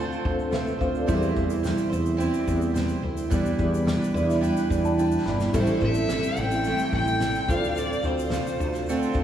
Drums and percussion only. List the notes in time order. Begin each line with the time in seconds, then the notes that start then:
0.12 shaker
0.25 kick
0.39 shaker
0.52 snare, shaker
0.67 shaker
0.81 kick, shaker
0.95 shaker
1.08 kick, shaker
1.22 shaker
1.36 kick, shaker
1.50 shaker
1.52 shaker
1.64 snare, shaker
1.66 shaker
1.78 shaker
1.92 shaker
2.06 shaker
2.20 shaker
2.34 shaker
2.48 kick, shaker
2.62 shaker
2.75 snare, shaker
2.89 shaker
2.91 shaker
3.17 shaker
3.31 kick, shaker
3.46 shaker
3.59 kick, shaker
3.74 shaker
3.87 snare, shaker
4.02 shaker
4.04 shaker
4.17 shaker
4.29 snare, shaker
4.43 shaker
4.57 shaker
4.70 kick, shaker
4.84 shaker
4.99 shaker
5.12 shaker
5.26 snare
5.40 snare, shaker
5.54 kick, crash, shaker
5.67 shaker
5.81 kick, shaker
5.94 shaker
6.09 snare, shaker
6.24 shaker
6.36 shaker
6.51 snare, shaker
6.64 shaker
6.79 shaker
6.92 kick, shaker
7.07 shaker
7.20 snare, shaker
7.22 shaker
7.35 shaker
7.48 kick, shaker
7.50 shaker
7.64 shaker
7.75 shaker
7.78 shaker
7.93 shaker
8.03 shaker
8.17 shaker
8.19 shaker
8.30 snare, shaker
8.33 shaker
8.47 shaker
8.58 shaker
8.61 shaker
8.72 snare, shaker
8.75 shaker
8.86 shaker
8.89 shaker
9.02 shaker
9.13 kick, shaker